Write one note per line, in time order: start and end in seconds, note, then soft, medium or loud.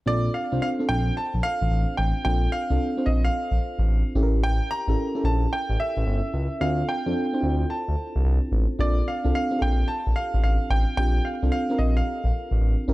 0.06 0.29 A#1 loud
0.06 0.46 C4 medium
0.06 0.47 D4 medium
0.06 0.47 F4 medium
0.06 0.47 A4 medium
0.06 0.32 D5 loud
0.34 0.61 F5 medium
0.52 0.59 C2 medium
0.52 0.76 C4 medium
0.52 0.76 D4 medium
0.52 0.76 F4 medium
0.52 0.76 C5 medium
0.62 0.68 F5 loud
0.79 1.75 C4 medium
0.79 1.75 D4 medium
0.79 1.75 F4 medium
0.79 1.75 A4 medium
0.89 1.11 A#1 loud
0.89 1.14 G5 loud
1.17 1.44 A5 loud
1.34 1.41 A#1 medium
1.43 1.94 F5 loud
1.61 1.69 A1 medium
1.71 1.85 A1 loud
1.97 2.13 A1 medium
1.97 2.23 G5 loud
2.25 2.48 A#1 loud
2.25 2.65 C4 medium
2.25 2.65 D4 medium
2.25 2.65 F4 medium
2.25 2.66 A4 medium
2.25 2.50 G5 loud
2.52 3.08 F5 loud
2.70 2.78 C2 medium
2.70 2.94 C4 medium
2.70 2.94 D4 medium
2.70 2.94 F4 medium
2.70 2.94 A4 medium
2.97 3.93 C4 medium
2.97 3.93 D4 medium
2.97 3.93 F4 medium
2.97 3.93 C5 medium
3.06 3.29 A#1 loud
3.06 3.23 D#5 medium
3.25 4.11 F5 loud
3.51 3.59 A#1 medium
3.79 3.86 A1 loud
3.88 4.03 A1 loud
4.15 4.60 A1 medium
4.15 4.80 C#4 medium
4.15 4.80 E4 medium
4.15 4.80 G4 medium
4.15 4.25 A4 medium
4.23 4.83 A#4 loud
4.44 4.68 G5 loud
4.71 5.21 A#5 loud
4.88 4.95 A1 loud
4.88 5.12 C#4 medium
4.88 5.12 E4 medium
4.88 5.12 G4 medium
4.88 5.12 A4 medium
5.15 6.11 C#4 medium
5.15 6.11 E4 medium
5.15 6.11 G4 medium
5.15 6.11 A4 medium
5.24 5.47 A#1 loud
5.24 5.53 A5 loud
5.53 5.77 G5 loud
5.69 5.77 A1 loud
5.80 6.63 E5 loud
5.97 6.04 A1 loud
6.06 6.21 G1 loud
6.33 6.48 C#2 medium
6.61 6.83 D2 loud
6.61 7.01 C4 medium
6.61 7.01 D4 medium
6.61 7.01 F4 medium
6.61 7.02 A4 medium
6.61 6.89 F5 loud
6.89 7.72 G5 medium
7.06 7.14 F2 medium
7.06 7.30 C4 medium
7.06 7.30 D4 medium
7.06 7.30 F4 medium
7.06 7.31 A4 medium
7.33 8.29 C4 medium
7.33 8.29 D4 medium
7.33 7.38 E4 medium
7.33 8.29 C5 medium
7.41 7.65 D2 loud
7.41 8.32 F4 medium
7.70 8.48 A5 medium
7.88 7.96 D2 medium
8.16 8.23 C2 loud
8.25 8.40 C2 loud
8.52 8.67 A1 medium
8.79 9.01 A#1 loud
8.79 9.19 C4 medium
8.79 9.19 D4 medium
8.79 9.20 F4 medium
8.79 9.20 A4 medium
8.79 9.08 D5 loud
9.08 9.34 F5 medium
9.24 9.32 C2 medium
9.24 9.48 C4 medium
9.24 9.48 D4 medium
9.24 9.49 F4 medium
9.24 9.49 A4 medium
9.35 9.62 F5 loud
9.51 10.47 C4 medium
9.51 10.47 D4 medium
9.51 10.47 F4 medium
9.51 9.56 G4 medium
9.59 9.84 A#1 loud
9.59 10.51 A4 medium
9.59 9.87 G5 loud
9.88 10.16 A5 loud
10.07 10.14 A#1 medium
10.16 10.41 F5 medium
10.34 10.41 A1 medium
10.43 10.58 A1 loud
10.43 10.68 F5 medium
10.70 10.85 A1 loud
10.70 10.96 G5 loud
10.97 11.20 A#1 loud
10.97 11.37 C4 medium
10.97 11.38 D4 medium
10.97 11.38 F4 medium
10.97 11.38 G4 medium
10.97 11.25 G5 loud
11.25 11.50 F5 medium
11.43 11.50 C2 medium
11.43 11.66 C4 medium
11.43 11.67 D4 medium
11.43 11.67 F4 medium
11.43 11.67 A4 medium
11.52 11.80 F5 loud
11.70 12.65 C4 medium
11.70 12.65 D4 medium
11.70 12.66 F4 medium
11.70 12.66 A#4 medium
11.79 12.01 A#1 medium
11.79 11.96 D#5 medium
11.97 12.84 F5 medium
12.24 12.32 A#1 medium
12.51 12.59 A1 medium
12.60 12.76 A1 medium
12.88 12.94 A1 medium
12.88 12.94 C#4 medium
12.88 12.94 E4 medium
12.88 12.94 G4 medium
12.88 12.94 A#4 loud